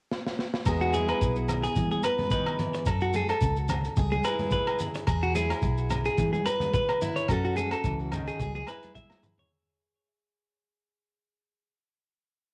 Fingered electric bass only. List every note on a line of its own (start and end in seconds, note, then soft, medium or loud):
0.67 1.11 E2 loud
1.21 1.66 B1 medium
1.76 1.99 E3 medium
2.87 3.31 F#2 medium
3.42 3.87 C#2 medium
3.97 4.20 C#2 medium
5.08 5.52 E2 medium
5.63 6.08 B1 medium
6.18 6.41 E3 medium
7.29 7.74 F#2 medium
7.84 8.29 C#2 medium
8.40 8.62 C#2 medium